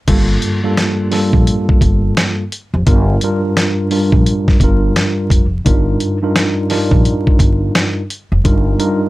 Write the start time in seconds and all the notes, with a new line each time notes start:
0.07 G1 G2 G3 A#3 F4 A4, kick, closed hi-hat, crash
0.42 closed hi-hat
0.63 G2 G3 A#3 F4 A4
0.77 snare, closed hi-hat
1.10 G2 G3 A#3 F4 A4, snare, open hi-hat
1.33 A#1, kick
1.47 closed hi-hat
1.69 kick
1.81 G1, kick, closed hi-hat
2.17 snare, closed hi-hat
2.52 closed hi-hat
2.74 F1
2.86 G1 G2 G3 D4 F4 A#4, kick, closed hi-hat
3.21 G2 G3 D4 F4 A#4, closed hi-hat
3.57 snare, closed hi-hat
3.90 G2 G3 D4 F4 A#4, open hi-hat
4.12 A#1, kick
4.26 closed hi-hat
4.48 kick, snare
4.60 G1 G2 G3 D4 F4 A#4, kick, closed hi-hat
4.96 snare, closed hi-hat
5.30 F1, kick, closed hi-hat
5.65 G1 G2 G3 D4 D#4 F4 A#4, kick, closed hi-hat
6.00 closed hi-hat
6.22 G2 G3 D4 D#4 F4 A#4
6.36 snare, closed hi-hat
6.69 G2 G3 D4 D#4 F4 A#4, snare, open hi-hat
6.91 A#1, kick
7.05 closed hi-hat
7.27 kick
7.39 G1, kick, closed hi-hat
7.75 snare, closed hi-hat
8.10 closed hi-hat
8.32 F1
8.44 G1 G2 G3 D4 D#4 F4 A#4, kick, closed hi-hat
8.78 G2 G3 D4 D#4 F4 A#4, closed hi-hat